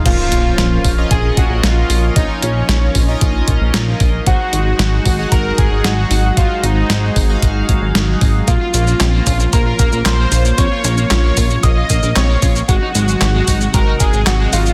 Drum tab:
CC |x---------------|----------------|----------------|----------------|
HH |x-x-x-o-x-x-x-o-|x-x-x-o-x-x-x-o-|x-x-x-o-x-x-x-o-|x-x-x-o-x-x-x-o-|
SH |----------------|----------------|----------------|----------------|
CP |----------------|----------------|----------------|----------------|
SD |----o-------o---|----o-------o---|----o-------o---|----o-------o---|
BD |o-----o-o-o-----|o-----o-o-o---o-|o-----o-o-o-----|o-----o-o-o---o-|

CC |----------------|----------------|----------------|
HH |x-x-x-o-x-x-x-o-|x-x-x-o-x-x-x-o-|x-x-x-o-x-x-x-o-|
SH |x-xxx-xxx-xxx-xx|x-xxx-xxx-xxx-xx|x-xxx-xxx-xxx-xx|
CP |----x-------x---|----x-------x---|----x-------x---|
SD |----o-------o---|----o-------o---|----o-------o---|
BD |o-----o-o-o-----|o-----o-o-o---o-|o-----o-o-o-----|